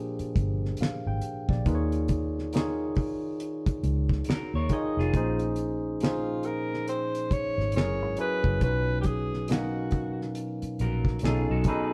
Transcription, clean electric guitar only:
4.29 4.53 F#4 medium
4.29 4.53 A#4 medium
4.55 4.71 A#4 medium
4.55 4.71 C#5 medium
4.73 4.97 D#5 medium
4.99 5.40 F4 medium
4.99 5.39 G#4 medium
10.81 11.22 F#4 medium
10.81 11.22 A#4 medium
11.25 11.49 F4 medium
11.25 11.49 G#4 medium
11.51 11.67 F#4 medium
11.51 11.66 A4 medium
11.67 11.92 G#4 medium
11.67 11.92 B4 medium

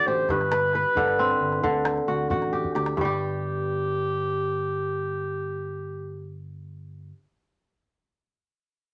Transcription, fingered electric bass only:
0.07 0.25 A1 medium
0.28 0.83 G1 loud
0.95 1.32 G2 medium
1.40 1.59 G1 medium
1.63 1.99 D2 medium
2.07 2.26 D2 medium
2.30 2.66 A1 medium
2.75 2.93 D2 medium
2.96 7.11 G1 medium

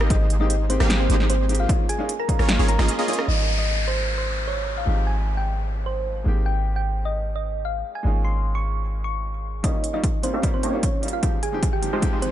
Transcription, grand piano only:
0.09 0.27 G#3 medium
0.09 0.27 A#3 medium
0.09 0.27 C4 medium
0.09 0.28 D#4 medium
0.09 0.28 G4 medium
0.40 0.50 G#3 medium
0.40 0.51 A#3 medium
0.40 0.51 C4 medium
0.40 0.51 D#4 medium
0.40 0.51 G4 loud
0.69 0.87 G#3 medium
0.69 0.87 A#3 medium
0.69 0.87 C4 medium
0.69 0.87 D#4 medium
0.69 0.88 G4 medium
0.89 1.17 G#3 loud
0.89 1.17 A#3 medium
0.89 1.18 C4 medium
0.89 1.18 D#4 medium
0.89 1.18 G4 loud
1.19 1.30 G#3 medium
1.19 1.30 A#3 medium
1.19 1.30 C4 medium
1.19 1.30 D#4 medium
1.19 1.31 G4 medium
1.48 1.66 G#3 medium
1.48 1.67 A#3 medium
1.48 1.67 C4 medium
1.48 1.67 D#4 medium
1.48 1.68 G4 medium
1.69 1.86 G#3 medium
1.69 1.86 A#3 medium
1.69 1.86 C#4 medium
1.69 1.87 D#4 medium
1.69 1.87 F4 medium
1.98 2.09 G#3 medium
1.98 2.09 A#3 medium
1.98 2.10 C#4 medium
1.98 2.10 D#4 medium
1.98 2.10 F4 loud
2.28 2.45 G#3 medium
2.28 2.46 A#3 medium
2.28 2.46 C#4 medium
2.28 2.46 D#4 medium
2.28 2.46 F4 medium
2.48 2.76 G#3 loud
2.48 2.76 A#3 medium
2.48 2.76 C#4 medium
2.48 2.77 D#4 medium
2.48 2.77 F4 loud
2.78 2.89 G#3 medium
2.78 2.89 A#3 medium
2.78 2.89 C#4 medium
2.78 2.89 D#4 medium
2.78 2.90 F4 medium
3.07 3.25 G#3 medium
3.07 3.26 A#3 medium
3.07 3.26 C#4 medium
3.07 3.26 D#4 medium
3.07 3.26 F4 medium
3.26 4.84 G3 medium
3.26 4.84 A#3 medium
3.26 4.85 C#4 medium
3.26 4.85 D#4 medium
3.30 4.86 F4 medium
4.85 6.23 F3 medium
4.85 6.23 G#3 medium
4.85 6.24 C4 medium
4.85 6.24 D#4 medium
4.89 6.25 G4 medium
6.24 8.02 G#3 medium
6.24 8.02 A#3 medium
6.24 8.03 C4 medium
6.24 8.03 D#4 medium
6.28 8.04 G4 medium
8.03 9.61 G#3 medium
8.03 9.61 A#3 medium
8.03 9.62 C#4 medium
8.03 9.62 D#4 medium
8.03 9.63 F4 medium
9.63 9.80 G3 medium
9.63 9.81 A#3 medium
9.63 9.81 C#4 medium
9.63 9.81 D#4 medium
9.63 9.82 F4 medium
9.93 10.04 G3 medium
9.93 10.04 A#3 medium
9.93 10.04 C#4 medium
9.93 10.05 D#4 medium
9.93 10.05 F4 medium
10.22 10.40 G3 medium
10.22 10.40 A#3 medium
10.22 10.41 C#4 medium
10.22 10.41 D#4 medium
10.22 10.41 F4 medium
10.42 10.71 G3 loud
10.42 10.71 A#3 medium
10.42 10.71 C#4 medium
10.42 10.71 D#4 medium
10.42 10.72 F4 loud
10.73 10.83 G3 medium
10.73 10.84 A#3 medium
10.73 10.84 C#4 medium
10.73 10.84 D#4 medium
10.73 10.84 F4 medium
11.02 11.20 G3 medium
11.02 11.20 A#3 medium
11.02 11.21 C#4 medium
11.02 11.21 D#4 medium
11.02 11.21 F4 medium
11.22 11.39 F3 medium
11.22 11.40 G#3 medium
11.22 11.40 C4 medium
11.22 11.40 D#4 medium
11.22 11.41 G4 medium
11.52 11.63 F3 medium
11.52 11.63 G#3 medium
11.52 11.63 C4 medium
11.52 11.64 D#4 medium
11.52 11.64 G4 medium
11.82 11.99 F3 medium
11.82 11.99 G#3 medium
11.82 12.00 C4 medium
11.82 12.00 D#4 medium
11.82 12.00 G4 medium
12.01 12.30 F3 loud
12.01 12.30 G#3 medium
12.01 12.30 C4 medium
12.01 12.30 D#4 medium
12.01 12.31 G4 loud

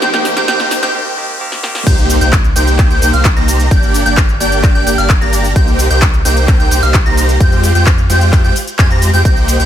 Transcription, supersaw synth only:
0.02 0.34 A#3 loud
0.02 0.34 D#4 medium
0.02 0.34 G4 medium
0.02 0.34 C5 medium
0.02 0.34 G5 loud
0.37 0.46 A#3 loud
0.37 0.46 D#4 medium
0.37 0.46 G4 medium
0.37 0.46 C5 medium
0.37 0.46 G5 loud
0.48 0.80 A#3 loud
0.48 0.80 D#4 medium
0.48 0.80 G4 medium
0.48 0.80 C5 loud
0.48 0.80 G5 loud
0.83 0.92 A#3 loud
0.83 0.92 D#4 medium
0.83 0.92 G4 medium
0.83 0.92 C5 medium
0.83 0.92 G5 loud
1.87 2.18 A#3 loud
1.87 2.18 D#4 loud
1.87 2.18 G4 medium
1.87 2.18 C5 loud
1.87 2.18 G5 loud
2.21 2.35 A#3 loud
2.21 2.35 D#4 medium
2.21 2.35 G4 medium
2.21 2.35 C5 medium
2.21 2.35 G5 loud
2.56 2.88 A#3 loud
2.56 2.88 D#4 medium
2.56 2.88 G4 medium
2.56 2.88 C5 medium
2.56 2.88 G5 loud
2.90 3.00 A#3 medium
2.90 3.00 D#4 medium
2.90 3.00 G4 medium
2.90 3.00 C5 medium
2.90 3.00 G5 loud
3.02 3.12 A#3 loud
3.02 3.12 D#4 medium
3.02 3.12 G4 medium
3.02 3.12 C5 medium
3.02 3.12 G5 loud
3.13 3.27 A#3 medium
3.13 3.27 D#4 medium
3.13 3.27 G4 medium
3.13 3.27 C5 medium
3.13 3.27 F5 medium
3.37 3.68 A#3 medium
3.37 3.68 D#4 medium
3.37 3.68 G4 medium
3.37 3.68 C5 medium
3.37 3.68 A#5 medium
3.71 4.03 A#3 loud
3.71 4.03 D4 loud
3.71 4.03 G4 medium
3.71 4.03 D5 medium
3.71 4.03 G5 loud
4.06 4.20 A#3 loud
4.06 4.20 D4 medium
4.06 4.20 G4 medium
4.06 4.20 D5 medium
4.06 4.20 G5 loud
4.40 4.72 A#3 loud
4.40 4.72 D4 medium
4.40 4.72 G4 medium
4.40 4.72 D5 medium
4.40 4.72 G5 loud
4.75 4.84 A#3 medium
4.75 4.84 D4 medium
4.75 4.84 G4 medium
4.75 4.84 D5 medium
4.75 4.84 G5 loud
4.87 4.96 A#3 loud
4.87 4.96 D4 medium
4.87 4.96 G4 medium
4.87 4.96 D5 medium
4.87 4.96 G5 loud
4.98 5.12 A#3 medium
4.98 5.12 D4 medium
4.98 5.12 G4 medium
4.98 5.12 D5 medium
4.98 5.12 F5 medium
5.21 5.53 A#3 medium
5.21 5.53 D4 medium
5.21 5.53 G4 medium
5.21 5.53 D5 medium
5.21 5.53 A#5 medium
5.56 5.88 A#3 loud
5.56 5.88 D#4 medium
5.56 5.88 G4 loud
5.56 5.88 C5 medium
5.56 5.88 G5 loud
5.91 6.04 A#3 medium
5.91 6.04 D#4 medium
5.91 6.04 G4 medium
5.91 6.04 C5 medium
5.91 6.04 G5 loud
6.25 6.57 A#3 loud
6.25 6.57 D#4 medium
6.25 6.57 G4 medium
6.25 6.57 C5 medium
6.25 6.57 G5 loud
6.60 6.69 A#3 medium
6.60 6.69 D#4 medium
6.60 6.69 G4 medium
6.60 6.69 C5 medium
6.60 6.69 G5 loud
6.71 6.81 A#3 loud
6.71 6.81 D#4 medium
6.71 6.81 G4 medium
6.71 6.81 C5 medium
6.71 6.81 G5 loud
6.83 6.97 A#3 medium
6.83 6.97 D#4 medium
6.83 6.97 G4 medium
6.83 6.97 C5 medium
6.83 6.97 F5 medium
7.06 7.38 A#3 medium
7.06 7.38 D#4 medium
7.06 7.38 G4 medium
7.06 7.38 C5 medium
7.06 7.38 A#5 medium
7.40 7.72 G#3 loud
7.40 7.72 F4 medium
7.40 7.72 G4 medium
7.40 7.72 C5 medium
7.40 7.72 G5 loud
7.75 7.89 G#3 loud
7.75 7.89 F4 medium
7.75 7.89 G4 medium
7.75 7.89 C5 medium
7.75 7.89 G5 loud
8.10 8.42 G#3 loud
8.10 8.42 F4 loud
8.10 8.42 G4 loud
8.10 8.42 C5 loud
8.10 8.42 G5 loud
8.44 8.54 G#3 medium
8.44 8.54 F4 medium
8.44 8.54 G4 medium
8.44 8.54 C5 medium
8.44 8.54 G5 loud
8.79 8.88 G#3 loud
8.79 8.88 F4 medium
8.79 8.88 G4 medium
8.79 8.88 C5 medium
8.79 8.88 G#5 loud
8.91 9.10 G#3 medium
8.91 9.10 F4 medium
8.91 9.10 G4 medium
8.91 9.10 C5 medium
8.91 9.10 A#5 medium
9.14 9.22 G#3 medium
9.14 9.22 F4 medium
9.14 9.22 G4 medium
9.14 9.22 C5 medium
9.14 9.22 G5 loud
9.25 9.57 A#3 loud
9.25 9.57 D#4 loud
9.25 9.57 G4 medium
9.25 9.57 C5 medium
9.25 9.57 G5 loud
9.60 9.65 A#3 medium
9.60 9.65 D#4 medium
9.60 9.65 G4 medium
9.60 9.65 C5 medium
9.60 9.65 G5 loud

